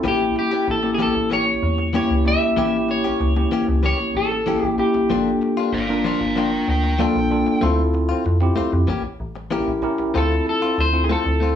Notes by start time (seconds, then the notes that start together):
0.04 A1 E3 A#3 C#4 E4 G4
0.36 G4, muted clean electric guitar stroke
0.51 A#3 C#4 G4
0.67 A1 A4, muted clean electric guitar stroke
0.83 A#3 C#4 E4 G4, muted clean electric guitar stroke
0.94 G#4
0.98 E3 A#3 C#4 G4 A4
1.15 A1, muted clean electric guitar stroke
1.30 E3 A#3 C#4 G4 C#5
1.47 muted clean electric guitar stroke
1.63 E2
1.78 muted clean electric guitar stroke
1.93 E3 A#3 C#4 E4 G4 C#5
2.10 C#2
2.25 A#3 C#4 E4 G4 E5, muted clean electric guitar stroke
2.41 A1, muted clean electric guitar stroke
2.56 A1 E3 A#3 C#4 E4 G4
2.88 C#5, muted clean electric guitar stroke
3.04 A#3 C#4 G4
3.20 C#2, muted clean electric guitar stroke
3.36 A#3 C#4 E4 G4, muted clean electric guitar stroke
3.51 E3 A#3 C#4 G4
3.68 C#2, muted clean electric guitar stroke
3.83 E3 A#3 C#4 G4 C#5
3.99 A1, muted clean electric guitar stroke
4.15 A1 A4
4.31 muted clean electric guitar stroke
4.46 E3 A#3 C#4 E4 G4
4.63 A1 G4
4.78 A#3 C#4 E4 G4, muted clean electric guitar stroke
4.95 A1, muted clean electric guitar stroke
5.09 G1 F3 A#3 D4 F4 A4
5.42 muted clean electric guitar stroke
5.57 A#3 D4 F4
5.73 G1 D5 F5, muted clean electric guitar stroke
5.89 A#3 D4 F4 A#4, muted clean electric guitar stroke
6.04 F3 A#3 D4 F4 D5 F5
6.21 G1, muted clean electric guitar stroke
6.36 F3 A#3 D4 F4 A#4 G5
6.52 muted clean electric guitar stroke
6.68 D2 A#4 G5
6.84 muted clean electric guitar stroke
6.99 F3 A#3 D4 F4 A4 G5
7.16 A#1
7.30 A#3 D4 F4 A4, muted clean electric guitar stroke
7.47 muted clean electric guitar stroke
7.61 D2 A3 C4 E4 F4 A4
7.94 muted clean electric guitar stroke
8.09 C4 F4
8.25 F2, muted clean electric guitar stroke
8.41 C4 E4 F4 G4, muted clean electric guitar stroke
8.56 D2 A3 C4 F4
8.72 F2, muted clean electric guitar stroke
8.87 A1 E3 A#3 C#4 G4
9.04 A1, muted clean electric guitar stroke
9.20 A1
9.36 muted clean electric guitar stroke
9.51 E3 A#3 C#4 E4 G4 A#4
9.68 A1
9.82 C#4 E4 G4 A#4, muted clean electric guitar stroke
9.98 A1, muted clean electric guitar stroke
10.14 D2 A3 C4 E4 F4 A4
10.46 A4, muted clean electric guitar stroke
10.62 C4 F4
10.78 D2 C5, muted clean electric guitar stroke
10.93 C4 E4 F4 A4, muted clean electric guitar stroke
11.04 G#4
11.09 A3 C4 F4 A4
11.25 D2, muted clean electric guitar stroke
11.40 A3 C4 F4